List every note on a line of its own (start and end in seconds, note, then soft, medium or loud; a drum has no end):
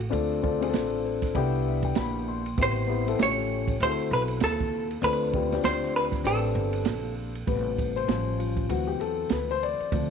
0.00 ride soft
0.10 0.71 D2 loud
0.10 0.38 C4 medium
0.10 0.39 D4 medium
0.10 0.39 F4 medium
0.10 0.39 A4 medium
0.10 ride medium
0.42 0.58 C4 medium
0.42 0.59 D4 medium
0.42 0.59 F4 medium
0.42 0.59 A4 medium
0.42 kick medium
0.61 1.35 C4 medium
0.61 1.33 D4 medium
0.61 1.35 F4 medium
0.61 0.68 G#4 medium
0.61 ride medium
0.69 1.39 A4 medium
0.73 1.32 A1 medium
0.73 snare loud
0.73 hi-hat pedal soft
0.73 ride medium
1.05 1.33 C5 medium
1.22 kick medium
1.22 snare soft
1.22 ride medium
1.34 1.93 C2 medium
1.34 2.41 B3 medium
1.34 2.41 D4 medium
1.34 2.41 E4 medium
1.34 2.42 G4 loud
1.34 1.64 D5 medium
1.34 kick medium
1.34 ride medium
1.67 1.84 E5 medium
1.83 1.96 G5 medium
1.83 kick medium
1.83 ride medium
1.95 2.55 A#1 medium
1.95 2.25 B5 medium
1.95 snare loud
1.95 hi-hat pedal medium
1.95 ride medium
2.28 2.56 C6 medium
2.46 ride medium
2.57 3.16 A1 medium
2.57 2.84 B3 medium
2.57 2.85 C4 medium
2.57 2.85 E4 medium
2.57 2.86 G4 medium
2.57 kick loud
2.57 ride medium
2.63 3.22 C5 loud
2.87 3.03 B3 medium
2.87 3.04 C4 medium
2.87 3.04 E4 medium
2.87 3.05 G4 medium
3.06 3.19 B3 medium
3.06 3.19 C4 medium
3.06 3.19 E4 medium
3.06 3.20 A4 medium
3.06 ride medium
3.19 3.77 A1 medium
3.19 3.72 A3 medium
3.19 3.73 C#4 medium
3.19 3.73 F4 medium
3.19 3.73 G4 medium
3.19 snare loud
3.19 hi-hat pedal soft
3.19 ride medium
3.23 3.82 C#5 medium
3.39 snare soft
3.68 kick loud
3.68 ride medium
3.80 4.09 D2 loud
3.80 4.86 C4 medium
3.80 4.87 E4 medium
3.80 4.87 F#4 medium
3.80 3.90 G#4 medium
3.80 4.13 C5 loud
3.80 ride medium
3.89 4.90 A4 medium
4.11 4.40 B1 loud
4.11 4.21 B4 medium
4.28 ride medium
4.40 5.00 D#2 medium
4.40 4.88 A4 medium
4.40 snare loud
4.40 hi-hat pedal medium
4.40 ride medium
4.60 kick medium
4.91 ride medium
5.01 5.60 D2 loud
5.01 5.29 C4 medium
5.01 5.29 D4 medium
5.01 5.30 F4 medium
5.01 5.30 A4 medium
5.01 5.61 B4 loud
5.01 ride medium
5.33 5.49 C4 medium
5.33 5.49 D4 medium
5.33 5.49 F4 medium
5.33 5.50 G4 medium
5.33 kick loud
5.51 6.23 C4 medium
5.51 6.23 D4 medium
5.51 6.26 F4 medium
5.51 6.24 G4 medium
5.51 snare soft
5.51 ride medium
5.63 6.22 D2 medium
5.63 5.96 C5 medium
5.63 snare loud
5.63 hi-hat pedal soft
5.63 ride medium
5.83 snare soft
5.96 6.04 B4 medium
6.12 kick medium
6.12 snare soft
6.12 ride medium
6.24 6.54 A1 medium
6.24 7.30 C4 medium
6.24 7.31 D4 medium
6.24 7.31 G4 medium
6.24 7.14 A4 medium
6.24 7.32 B4 medium
6.24 ride medium
6.55 6.85 G1 loud
6.73 ride medium
6.85 7.44 A#1 medium
6.85 snare loud
6.85 hi-hat pedal medium
6.85 ride medium
7.35 ride soft
7.47 8.06 A1 loud
7.47 8.05 C3 soft
7.47 8.06 G3 soft
7.47 8.06 B3 medium
7.47 7.98 B4 medium
7.47 kick loud
7.47 ride medium
7.78 kick medium
7.78 ride medium
7.96 8.36 C5 medium
7.96 ride soft
8.07 8.67 A1 medium
8.07 8.66 F3 medium
8.07 8.67 G3 soft
8.07 8.67 C#4 medium
8.07 snare loud
8.07 hi-hat pedal soft
8.07 ride medium
8.38 8.70 F4 medium
8.38 ride medium
8.57 kick medium
8.57 ride soft
8.69 8.99 D2 medium
8.69 9.88 E3 medium
8.69 9.89 F#3 soft
8.69 9.89 C4 medium
8.69 8.87 F#4 medium
8.69 ride medium
8.87 8.99 G4 medium
9.00 9.29 E2 medium
9.00 9.32 A4 medium
9.00 ride medium
9.29 9.77 D2 medium
9.29 9.51 B4 medium
9.29 snare loud
9.29 hi-hat pedal medium
9.29 ride medium
9.51 9.63 C5 loud
9.63 10.10 D5 loud
9.63 ride medium
9.80 muted upright bass stroke soft
9.80 ride soft
9.92 10.10 D2 loud
9.92 10.10 F3 medium
9.92 10.10 A3 soft
9.92 10.10 C4 medium
9.92 kick loud
9.92 ride medium